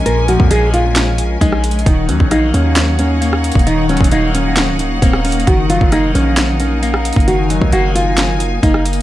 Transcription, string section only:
0.00 1.83 C#4 medium
0.00 1.83 A#4 medium
0.00 1.83 G#5 medium
1.86 9.02 D#4 medium
1.86 5.44 C#5 medium
1.86 7.24 F#5 medium
5.47 9.02 A#4 medium
7.28 9.02 G#5 medium

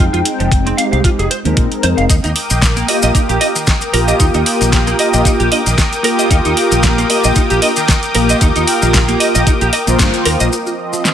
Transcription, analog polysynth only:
0.00 0.75 G#3 medium
0.00 0.75 C4 medium
0.00 0.75 D#4 medium
0.00 0.76 G5 loud
0.77 1.28 G#3 medium
0.77 1.28 C4 medium
0.77 1.28 D#4 medium
0.77 1.28 G4 medium
1.44 2.08 G#3 medium
1.44 2.08 C4 medium
1.44 2.08 D#4 medium
1.44 2.09 A#4 loud
2.88 3.38 A#3 medium
2.88 3.38 F4 medium
2.88 3.39 G4 medium
3.41 3.49 A#3 medium
3.41 3.50 D4 medium
3.41 3.50 F4 medium
3.41 3.50 G4 medium
3.93 4.96 A#3 medium
3.93 4.96 F4 medium
3.93 4.97 G4 loud
4.98 5.49 A#3 medium
4.98 5.49 F4 medium
4.98 5.49 G4 loud
5.51 5.60 A#3 medium
5.51 5.60 D4 medium
5.51 5.60 F4 medium
5.51 5.60 G4 medium
6.03 7.06 A#3 medium
6.03 7.07 F4 medium
6.03 7.07 G4 loud
7.09 7.59 A#3 medium
7.09 7.60 F4 medium
7.09 7.60 G4 medium
7.62 7.71 A#3 medium
7.62 7.71 D4 medium
7.62 7.71 F4 medium
7.62 7.71 G4 medium
8.14 9.17 A#3 loud
8.14 9.18 F4 medium
8.14 9.18 G4 loud
9.20 9.70 A#3 medium
9.20 9.70 F4 medium
9.20 9.70 G4 loud
9.87 10.50 A#3 loud
9.87 10.51 F4 medium
9.87 10.51 C5 loud

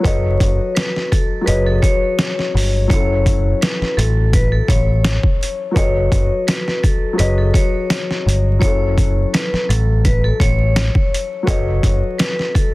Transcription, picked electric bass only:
0.05 0.36 F#1 loud
0.41 0.58 F#1 medium
1.48 1.79 F#1 loud
2.55 2.86 G1 medium
2.90 3.53 F#1 loud
3.82 muted picked electric bass stroke soft
3.98 4.60 A1 medium
4.69 5.17 A1 medium
5.76 6.07 F#1 loud
6.12 6.29 F#1 medium
7.19 7.50 F#1 loud
8.26 8.57 G1 medium
8.62 9.24 F#1 loud
9.53 muted picked electric bass stroke soft
9.69 10.31 A1 medium
10.40 10.89 A1 medium
11.48 11.79 F#1 loud
11.83 12.01 F#1 medium

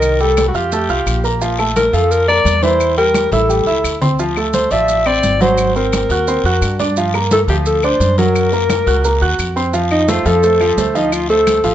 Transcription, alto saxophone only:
0.00 0.22 A#4 loud
0.21 0.47 A4 medium
0.48 0.57 F#4 medium
0.56 1.25 G4 medium
1.76 1.96 A#4 medium
1.94 2.12 A4 medium
2.11 2.28 A#4 medium
2.28 2.64 D5 loud
2.63 2.97 C5 loud
2.98 3.30 A#4 medium
3.33 3.98 A4 medium
4.54 4.73 C5 loud
4.71 5.08 E5 loud
5.07 5.41 D5 loud
5.42 5.73 C5 medium
5.76 6.76 A#4 medium
7.33 7.40 A4 loud
7.49 7.57 G4 medium
7.67 7.86 A4 loud
7.84 8.17 C5 loud
8.18 9.35 A#4 loud
9.91 10.11 D#4 medium
10.09 10.28 F4 medium
10.26 10.78 A4 loud
10.95 11.14 D#4 medium
11.13 11.29 F4 medium
11.30 11.75 A4 loud

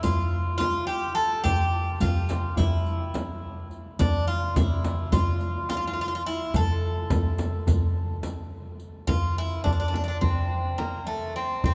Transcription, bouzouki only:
0.03 0.57 F4 medium
0.58 0.85 F4 medium
0.87 1.14 G4 medium
1.15 1.43 A4 loud
1.44 2.01 G4 loud
2.01 2.57 F4 medium
2.57 3.67 E4 medium
3.99 4.27 D4 medium
4.28 4.57 F4 medium
4.57 5.12 E4 medium
5.12 5.68 F4 medium
5.70 5.76 F4 medium
5.77 5.84 F4 medium
5.87 5.92 F4 medium
5.93 6.00 F4 medium
6.01 6.07 F4 medium
6.08 6.14 F4 medium
6.15 6.22 F4 medium
6.26 6.55 E4 medium
6.56 8.49 A4 medium
9.07 9.37 F4 loud
9.38 9.63 E4 medium
9.64 9.71 D4 medium
9.73 9.79 D4 medium
9.80 9.87 D4 medium
9.88 9.94 D4 medium
9.96 10.03 D4 medium
10.04 10.07 D4 medium
10.08 10.17 D4 medium
10.21 10.80 C4 medium
10.78 11.07 A#3 medium
11.07 11.35 A3 medium
11.36 11.65 C4 medium
11.66 11.74 C4 medium

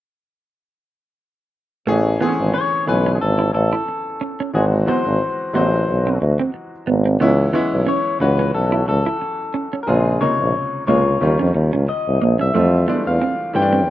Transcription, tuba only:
1.88 2.17 A1 medium
2.40 2.53 G#1 medium
2.88 3.17 B1 medium
3.22 3.51 G#1 medium
3.55 3.71 A1 medium
4.55 4.84 G#1 medium
5.07 5.19 G#1 medium
5.55 5.84 A1 medium
5.89 6.17 B1 medium
6.21 6.37 D2 medium
6.88 7.17 G#1 medium
7.21 7.50 C#2 loud
7.73 7.86 B1 medium
8.21 8.50 C#2 medium
8.54 8.84 B1 medium
8.88 9.04 C#2 medium
9.88 10.17 A#1 medium
10.40 10.53 A#1 medium
10.88 11.17 C#2 medium
11.22 11.38 D#2 medium
11.40 11.53 F2 medium
11.55 11.71 D#2 medium
11.74 11.86 C#2 medium
12.08 12.20 C2 medium
12.23 12.38 A#1 medium
12.41 12.53 C2 medium
12.55 12.84 F2 medium
13.07 13.19 E2 medium
13.55 13.90 G2 medium

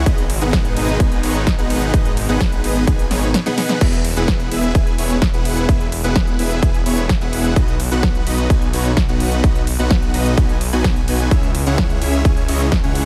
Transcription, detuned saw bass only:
0.06 0.39 G#1 loud
0.41 0.74 G#1 loud
0.77 0.98 G#1 loud
1.00 1.21 G#1 loud
1.23 1.56 G#1 loud
1.58 1.91 G#1 loud
1.94 2.27 G#1 medium
2.29 2.62 G#1 loud
2.64 2.85 G#1 loud
2.87 3.09 G#1 loud
3.11 3.34 G#1 loud
3.81 4.14 E1 loud
4.16 4.49 E1 loud
4.52 4.73 E1 loud
4.75 4.96 E1 loud
4.99 5.31 E1 loud
5.34 5.66 E1 loud
5.69 6.02 E1 loud
6.04 6.37 E1 loud
6.39 6.60 E1 loud
6.63 6.84 E1 loud
6.86 7.19 E1 medium
7.21 7.54 E1 loud
7.56 7.89 B1 loud
7.91 8.24 B1 loud
8.27 8.48 B1 loud
8.50 8.71 B1 loud
8.73 9.06 B1 loud
9.09 9.41 B1 loud
9.44 9.77 B1 loud
9.79 10.12 B1 loud
10.14 10.35 B1 loud
10.38 10.70 B1 loud
10.73 11.05 B1 loud
11.08 11.29 B1 medium
11.31 11.64 C#2 loud
11.66 11.99 C#2 loud
12.02 12.23 C#2 loud
12.25 12.46 C#2 loud
12.48 12.81 C#2 loud
12.84 13.05 C#2 loud

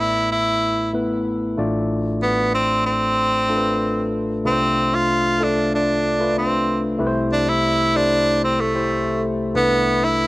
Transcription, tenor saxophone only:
0.00 0.31 E4 loud
0.32 0.91 E4 medium
2.23 2.52 B3 medium
2.54 2.84 C4 loud
2.86 4.09 C4 loud
4.47 4.96 C4 medium
4.95 5.45 F4 loud
5.43 5.74 D4 medium
5.75 6.33 D4 medium
6.38 6.82 C4 medium
7.33 7.50 D4 medium
7.49 7.98 E4 loud
7.96 8.43 D4 loud
8.44 8.62 C4 medium
8.60 9.24 A3 medium
9.56 10.06 B3 loud
10.04 10.27 E4 loud

